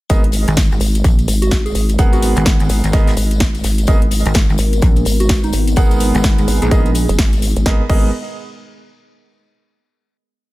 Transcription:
0.10 wobble bass G#1, grand piano B3 G#4 A#4 D#5, kick, closed hi-hat, tambourine
0.24 closed hi-hat
0.32 closed hi-hat, open hi-hat, tambourine
0.48 wobble bass G#1, closed hi-hat, tambourine
0.57 kick, snare, closed hi-hat, tambourine
0.71 wobble bass G#1, tambourine
0.80 wobble bass G#1, closed hi-hat, open hi-hat, tambourine
0.95 closed hi-hat, tambourine
1.04 wobble bass A#1, kick, closed hi-hat, tambourine
1.19 closed hi-hat, tambourine
1.28 wobble bass G#1, closed hi-hat, open hi-hat, tambourine
1.42 soft synth lead F#4, closed hi-hat, tambourine
1.51 kick, snare, closed hi-hat, tambourine
1.66 soft synth lead G#4, closed hi-hat, tambourine
1.75 wobble bass G#1, closed hi-hat, open hi-hat, tambourine
1.89 closed hi-hat, tambourine
1.98 wobble bass G#1, grand piano B3 G#4 A#4 F#5, kick, closed hi-hat, tambourine
2.13 soft synth lead F#4, closed hi-hat, tambourine
2.22 closed hi-hat, open hi-hat, tambourine
2.36 wobble bass G#1, closed hi-hat, tambourine
2.45 kick, snare, closed hi-hat, tambourine
2.59 wobble bass G#1, closed hi-hat, tambourine
2.69 wobble bass G#1, closed hi-hat, open hi-hat, tambourine
2.84 wobble bass G#1, closed hi-hat, tambourine
2.92 grand piano B3 G#4 A#4 D#5, kick, snare, closed hi-hat, tambourine
3.07 snare, closed hi-hat, tambourine
3.17 wobble bass G#1, closed hi-hat, open hi-hat, tambourine
3.31 closed hi-hat, tambourine
3.40 kick, snare, closed hi-hat, tambourine
3.55 closed hi-hat, tambourine
3.64 wobble bass G#1, snare, closed hi-hat, open hi-hat, tambourine
3.78 closed hi-hat, tambourine
3.87 wobble bass G#1, analog synth pad G#3 B3 D#4 A#4, grand piano B3 G#4 A#4 D#5, kick, closed hi-hat, tambourine
4.02 closed hi-hat
4.11 closed hi-hat, open hi-hat, tambourine
4.25 wobble bass G#1, closed hi-hat, tambourine
4.34 kick, snare, closed hi-hat, tambourine
4.49 wobble bass G#1, tambourine
4.58 wobble bass G#1, closed hi-hat, open hi-hat, tambourine
4.73 closed hi-hat, tambourine
4.82 wobble bass A#1, kick, closed hi-hat, tambourine
4.96 closed hi-hat, tambourine
5.05 wobble bass G#1, closed hi-hat, open hi-hat, tambourine
5.20 soft synth lead F#4, closed hi-hat, tambourine
5.29 kick, snare, closed hi-hat, tambourine
5.43 soft synth lead D#4, closed hi-hat, tambourine
5.53 wobble bass G#1, closed hi-hat, open hi-hat, tambourine
5.67 closed hi-hat, tambourine
5.76 wobble bass G#1, grand piano B3 G#4 A#4 F#5, analog synth pad G#4, kick, closed hi-hat, tambourine
5.91 closed hi-hat, tambourine
6.00 closed hi-hat, open hi-hat, tambourine
6.15 wobble bass G#1, closed hi-hat, tambourine
6.24 kick, snare, closed hi-hat
6.38 wobble bass G#1, closed hi-hat, tambourine
6.48 wobble bass G#1, closed hi-hat, open hi-hat, tambourine
6.62 wobble bass A#1, soft synth lead G#4, closed hi-hat, tambourine
6.71 grand piano B3 G#4 A#4 D#5, soft synth lead G#4, kick, closed hi-hat, tambourine
6.86 closed hi-hat, tambourine
6.95 closed hi-hat, open hi-hat, tambourine
7.08 wobble bass F#1, closed hi-hat, tambourine
7.19 wobble bass G#1, kick, snare, closed hi-hat, open hi-hat, tambourine
7.33 closed hi-hat, tambourine
7.42 closed hi-hat, open hi-hat, tambourine
7.56 wobble bass G#1, closed hi-hat, tambourine
7.66 wobble bass G#1, grand piano B3 G#4 A#4 D#5, kick, snare
7.89 wobble bass G#1, grand piano B3 G#4 A#4 D#5, kick, crash

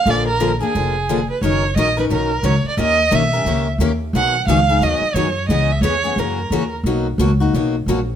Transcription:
Already playing: violin F5
0.06 upright bass A#1, steel-string acoustic guitar D3 F3 A#3 D4 G#4
0.10 violin D5
0.28 violin A#4
0.40 steel-string acoustic guitar D3 F3 A#3 D4 G#4
0.60 steel-string acoustic guitar A#3 D4 G#4, violin G#4
0.75 upright bass F1, steel-string acoustic guitar D3 F3 A#3 D4 G#4
1.09 steel-string acoustic guitar D3 F3 A#3 D4 G#4
1.31 violin B4
1.41 upright bass F#1, steel-string acoustic guitar D#3 F#3 C#4 D#4 A#4, violin C#5
1.76 upright bass A#1, steel-string acoustic guitar D#3 F#3 C#4 D#4 A#4, violin D#5
1.97 steel-string acoustic guitar C#4 D#4 A#4, violin B4
2.10 upright bass B1, steel-string acoustic guitar D#3 F#3 C#4 D#4 A#4, violin A#4
2.43 upright bass C#2, steel-string acoustic guitar D#3 F#3 C#4 D#4 A#4, violin C#5
2.63 muted upright bass stroke
2.68 violin D5
2.77 upright bass D#2, steel-string acoustic guitar D#3 A#3 C#4 G4 A#4, violin D#5
3.11 upright bass B1, steel-string acoustic guitar D#3 A#3 C#4 G4 A#4, violin E5
3.33 steel-string acoustic guitar C#4 G4 A#4
3.45 upright bass C#2, steel-string acoustic guitar D#3 A#3 C#4 G4 A#4
3.78 upright bass D#2, steel-string acoustic guitar D#3 A#3 C#4 G4 A#4
4.13 upright bass B1, steel-string acoustic guitar D#3 F#3 B3 D#4 G#4, violin F#5
4.47 upright bass C#2, steel-string acoustic guitar D#3 F#3 B3 D#4 G#4, violin F5
4.69 steel-string acoustic guitar B3 D#4 G#4
4.80 upright bass D#2, steel-string acoustic guitar D#3 F#3 B3 D#4 G#4, violin D#5
5.00 muted upright bass stroke
5.14 upright bass F#2, steel-string acoustic guitar D#3 F#3 B3 D#4 G#4, violin C#5
5.49 upright bass C#2, steel-string acoustic guitar C#3 E3 B3 C#4 G#4, violin D#5
5.72 violin E5
5.81 upright bass E2, steel-string acoustic guitar C#3 E3 B3 C#4 G#4, violin C#5
6.04 steel-string acoustic guitar B3 C#4 G#4
6.16 upright bass F#2, steel-string acoustic guitar C#3 E3 A#3 C#4 F#4, violin A#4
6.50 upright bass D#2, steel-string acoustic guitar C#3 E3 A#3 C#4 F#4
6.83 upright bass B1, steel-string acoustic guitar B2 F#3 A#3 D#4 F#4
7.18 upright bass C#2, steel-string acoustic guitar B2 F#3 A#3 D#4 F#4
7.40 steel-string acoustic guitar A#3 D#4 F#4
7.53 upright bass B1, steel-string acoustic guitar B2 F#3 A#3 D#4 F#4
7.86 upright bass A#1, steel-string acoustic guitar B2 F#3 A#3 D#4 F#4

